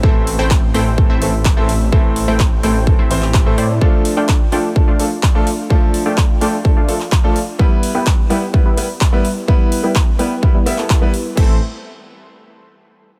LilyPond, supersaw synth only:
\new Staff \with { instrumentName = "Supersaw synth" } { \time 4/4 \key a \minor \tempo 4 = 127 <a c' e' c'' e''>8. <a c' e' c'' g''>8. <a c' e' c'' g''>8 r16 <a c' e' c'' e''>4 <a c' e' c'' e''>8. | <a c' e' c'' e''>8. <a c' e' c'' g''>8. <a c' e' c'' g''>8 r16 <a c' e' c'' e''>4 <a c' e' c'' e''>16 <a c' e' c'' d''>8 | <a d' f' d'' f''>8. <a d' f' d'' g''>8. <a d' f' d'' g''>8 r16 <a d' f' d'' f''>4 <a d' f' d'' f''>8. | <a d' f' d'' f''>8. <a d' f' d'' g''>8. <a d' f' d'' g''>8 r16 <a d' f' d'' f''>4 <a d' f' d'' f''>8. |
<g b e' b' e''>8. <g b e' b' g''>8. <g b e' b' g''>8 r16 <g b e' b' e''>4 <g b e' b' e''>8. | <g b e' b' e''>8. <g b e' b' g''>8. <g b e' b' g''>8 r16 <g b e' b' e''>4 <g b e' b' e''>8. | <a c' e' c'' e''>8 r2. r8 | }